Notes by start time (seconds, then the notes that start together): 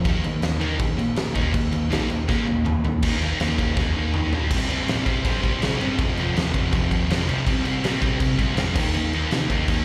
0.04 D#2 D#3 A#3 D#4, kick, crash
0.23 D#2 D#3 A#3, crash
0.42 D#2 D#3 A#3, snare, crash
0.60 D#2 D#3 A#3 D#4, crash
0.79 D#3 A#3, kick, crash
0.97 A#2 D#3 A#3, crash
1.16 A#2 D#3 A#3, snare, crash
1.34 D#2 D#3 A#3 D#4, kick, crash
1.53 D#2 D#3 A#3, kick, crash
1.72 D#2 D#3 A#3, crash
1.90 A#1 D#3 A#3 D#4, snare, crash
2.09 D#2 D#3 A#3, crash
2.28 A#2 D#3 A#3 D#4, kick, snare
2.47 D#2 D#3 A#3, high tom
2.65 D#2 D#3 A#3, mid tom
2.84 D#2 D#3 A#3, floor tom
3.02 D#2 D#3 A#3 D#4, kick, crash
3.22 D#3 A#3 D#4, crash
3.40 D#2 D#3 A#3 D#4, snare, crash
3.58 D#2 D#3 A#3 D#4, kick, crash
3.77 D#2 D#3 A#3 D#4, kick, snare
3.96 D#2 D#3 A#3 D#4
4.14 D#2 D#3 A#3 D#4, mid tom
4.32 D#2 D#3 A#3 D#4, floor tom
4.50 C2 C3 G3 C4, kick, crash
4.68 C3 G3 C4, crash
4.86 A#2 C3 G3 C4, snare, crash
5.05 C2 C3 G3 C4, kick, crash
5.24 C2 C3 G3 C4, kick, crash
5.42 A#1 C3 G3 C4, kick, crash
5.61 C3 G3 C4, snare, crash
5.80 G2 C3 G3 C4, crash
5.99 F1 F2 C3 F3, kick, crash
6.17 F2 C3 F3, crash
6.34 D#2 F2 C3 F3, snare, crash
6.54 F1 F2 C3 F3, kick, crash
6.73 F1 F2 C3 F3, kick, crash
6.91 D#2 F2 C3 F3, kick, crash
7.09 F2 C3 F3, snare, crash
7.28 C2 F2 C3 F3, crash
7.47 C2 C3 G3 C4, kick, crash
7.65 C3 G3 C4, crash
7.82 A#2 C3 G3 C4, snare, crash
8.02 C2 C3 G3 C4, kick, crash
8.20 C2 C3 G3 C4, kick, crash
8.37 A#1 C3 G3 C4, kick, crash
8.56 F2 C3 G3 C4, snare, crash
8.76 D#2 D#3 A#3 D#4, kick, crash
8.93 D#2 D#3 A#3 D#4, crash
9.13 D#3 A#3 D#4, crash
9.31 C3 D#3 A#3 D#4, snare, crash
9.50 D#2 D#3 A#3 D#4, kick, crash
9.68 D#2 D#3 A#3 D#4, kick, crash